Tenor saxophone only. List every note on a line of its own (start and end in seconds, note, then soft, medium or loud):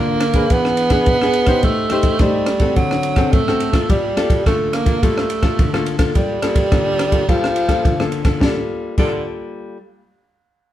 0.00 0.53 A#3 loud
0.52 1.66 B3 loud
1.64 2.23 A3 medium
2.21 2.78 G3 medium
2.76 3.34 F#3 medium
3.33 3.89 A3 medium
3.90 4.42 G3 medium
4.46 4.75 A3 medium
4.73 5.05 A#3 medium
5.03 5.89 A3 medium
6.16 7.31 G3 loud
7.29 8.14 F3 loud
8.42 8.57 D3 medium
8.98 9.24 D3 medium